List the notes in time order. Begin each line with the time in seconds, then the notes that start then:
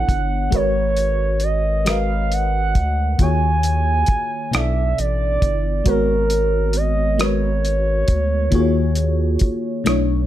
Already playing: B2 B3 D4 E4 A4 C#5 F#5
0.09 G1, kick, closed hi-hat
0.51 G#1 G#3 F#4 A#4 B4, kick, closed hi-hat
0.55 C#5
0.97 closed hi-hat
1.40 D#5, closed hi-hat
1.85 G#3 F#4 A#4 B4 F5, cross-stick, closed hi-hat
1.89 D#5
2.32 F#5, closed hi-hat
2.75 D2, kick, closed hi-hat
3.18 D#2 D#3 A#3 F4 F#4 G#4 G#5, kick, closed hi-hat
3.23 C#5
3.63 closed hi-hat
4.06 B1, kick, closed hi-hat
4.51 B1 B2 B3 D4 E4 A4 E5, cross-stick, closed hi-hat
4.55 D5
4.98 A1 D5, closed hi-hat
5.42 G1, kick, closed hi-hat
5.84 G#1 G#3 B3 F#4 A#4, kick, closed hi-hat
5.89 C#5
6.30 closed hi-hat
6.73 D#5, closed hi-hat
7.18 G#3 F#4 A#4 B4 C#5, cross-stick, closed hi-hat
7.23 C#5
7.65 closed hi-hat
8.08 D2, kick, closed hi-hat
8.51 D#2 D#3 A#3 F4 F#4 G#4, kick, closed hi-hat
8.55 C#5
8.95 closed hi-hat
9.39 B1, kick, closed hi-hat
9.84 B1 B2 A3 D4 E4, cross-stick, closed hi-hat
9.89 C#5